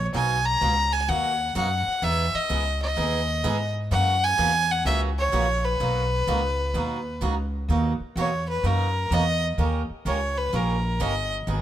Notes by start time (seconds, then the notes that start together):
Already playing: A#1
0.14 B1 B2 F#3 A#3 D#4 F#4 G#5
0.45 A#5
0.61 C#2 B2 F#3 A#3 D#4 F#4
0.92 G#5
1.08 D#2 B2 F#3 A#3 D#4 F#4 F#5
1.55 F#2 B2 F#3 A#3 D#4 F#4 F#5
1.87 muted upright bass stroke
2.02 E2 E3 G#3 B3 D#4 G#4 E5
2.34 D#5, muted upright bass stroke
2.49 C#2 E3 G#3 B3 D#4 G#4
2.82 D#5
2.96 D#2 E3 G#3 B3 D#4 G#4
3.44 G#2 E3 G#3 B3 D#4 G#4
3.91 F#2 C#3 E3 A#3 C#4 F#4 F#5
4.24 G#5
4.38 E2 C#3 E3 A#3 C#4 F#4
4.71 F#5
4.85 C#2 C#3 E3 A#3 C#4 F#4 E5
5.19 C#5
5.32 A#1 C#3 E3 A#3 C#4 F#4
5.65 B4
5.80 B1 B2 F#3 A#3 D#4 F#4
6.27 C#2 B2 F#3 A#3 D#4 F#4
6.74 D#2 B2 F#3 A#3 D#4 F#4
7.21 C#2 B2 F#3 A#3 D#4 F#4
7.68 D#2 B2 F#3 A#3 D#4 F#4
8.00 muted upright bass stroke
8.16 E2 B2 F#3 A#3 D#4 F#4 C#5
8.49 B4
8.63 F#2 B2 F#3 A#3 D#4 F#4 A#4
9.11 E2 B2 F#3 A#3 D#4 F#4 D#5
9.58 D#2 D#3 A#3 C#4 G4 A#4
9.89 muted upright bass stroke
10.05 C#2 D#3 A#3 C#4 G4 A#4 C#5
10.37 B4
10.53 A#1 D#3 A#3 C#4 G4 A#4
11.00 G1 D#3 A#3 C#4 G4 A#4 D#5
11.47 G#1 D#3 F#3 B3 D#4 G#4